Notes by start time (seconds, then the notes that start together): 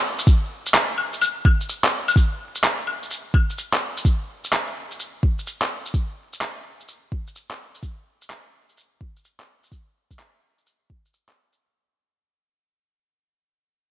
0.19 shaker
0.27 kick, shaker
0.66 shaker
0.74 clap, shaker
0.98 claves
1.13 shaker
1.22 claves, shaker
1.45 kick, claves
1.61 shaker
1.69 shaker
1.84 clap
2.08 claves, shaker
2.16 kick, shaker
2.55 shaker
2.64 clap, shaker
2.87 claves
3.03 shaker
3.11 shaker
3.34 kick, claves
3.50 shaker
3.58 shaker
3.73 clap
3.97 shaker
4.05 kick, shaker
4.44 shaker
4.53 clap, shaker
4.91 shaker
5.00 shaker
5.23 kick
5.39 shaker
5.47 shaker
5.62 clap
5.86 shaker
5.94 kick, shaker
6.33 shaker
6.41 clap, shaker
6.80 shaker
6.88 shaker
7.12 kick
7.27 shaker
7.35 shaker
7.51 clap
7.75 shaker
7.82 kick, shaker
8.22 shaker
8.30 clap, shaker
8.69 shaker
8.78 shaker
9.01 kick
9.16 shaker
9.25 shaker
9.40 clap
9.63 shaker
9.72 kick, shaker
10.11 kick, shaker
10.19 clap, shaker
10.58 shaker
10.66 shaker
10.90 kick
11.05 shaker
11.14 shaker
11.29 clap
11.53 shaker